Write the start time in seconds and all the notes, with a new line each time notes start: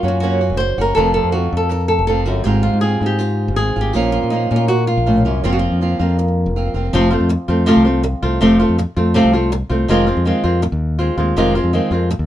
Already playing: F#3 F4
0.03 F#2 A#3 C#4 F#4
0.08 F#4
0.20 C#3 F#3 A#3 C#4 F#4
0.41 A#3 C#4 F#4
0.50 F#1
0.57 C5, muted nylon-string guitar stroke
0.78 F#1 A#3 C#4 F#4 A#4
0.95 F1 F2 C3 F3 A3 C4 F4 A4
1.14 A4
1.24 F2
1.32 A3 C4 F4 F#4
1.53 F2
1.57 A4
1.69 A#4, muted nylon-string guitar stroke
1.88 A4
1.99 F1
2.07 F2 F3 A3 C4 F4 A4
2.25 G1 F#2 A3 C4 F4 F#4
2.44 G#1 G#2 G#3 C4 F4 G4
2.63 F4
2.73 G#2
2.81 C4 F4 G#4
3.01 G#2 C4
3.06 G4
3.18 F4, muted nylon-string guitar stroke
3.48 G#1
3.56 G#3 C4 F4 G#4
3.76 G#1 C4 F4
3.81 G4
3.93 A#1 A#2 F3 A#3 C#4 F4
4.12 F4
4.23 A#2
4.30 F3 A#3 C#4 D#4 F4
4.51 A#2 A#3 C#4 F4
4.56 F4
4.68 F#4, muted nylon-string guitar stroke
4.87 F4
4.97 A#1
5.06 A2 A#3 C#4 F4
5.25 C2 F#2 A#3 C#4 F4
5.44 F1 F2 F3 A#3 C4 F4
5.53 F#4
5.59 F4
5.72 F2
5.81 F3 A#3 C4 F4
5.99 F2 A#3 C4 F4
6.19 muted nylon-string guitar stroke
6.46 F1
6.56 A#3 C4 F4
6.74 F1 A#3 C4 F4
6.93 F1 C3 F3 A3 C4 F4
7.11 A3 C4 F4
7.21 F2
7.29 muted nylon-string guitar stroke
7.48 F2 A3 C4 F4
7.66 C3 F3 A3 C4 F4
7.77 C2
7.84 A3 C4 F4
8.03 muted nylon-string guitar stroke
8.23 C2 A3 C4 F4
8.41 F1 C3 F3 A3 C4 F4
8.59 A3 C4 F4
8.69 F2
8.78 muted nylon-string guitar stroke
8.96 F2 A3 C4 F4
9.14 C3 F3 A3 C4 F4
9.24 C2
9.33 A3 C4 F4
9.52 muted nylon-string guitar stroke
9.70 C2 A3 C4 F4
9.88 F1 C3 D#3 G#3 C4 F4
10.07 G#3 C4 F4
10.17 F2
10.25 D#3 G#3 C4 F4
10.44 F2 G#3 C4 F4
10.62 muted nylon-string guitar stroke
10.72 D#2
10.99 G#3 C4 F4
11.17 D#2 G#3 C4 F4
11.36 F1 C3 D#3 G#3 C4 F4
11.55 G#3 C4 F4
11.64 F2
11.73 D#3 G#3 C4 F4
11.91 F2 G#3 C4 F4
12.10 muted nylon-string guitar stroke
12.19 D#2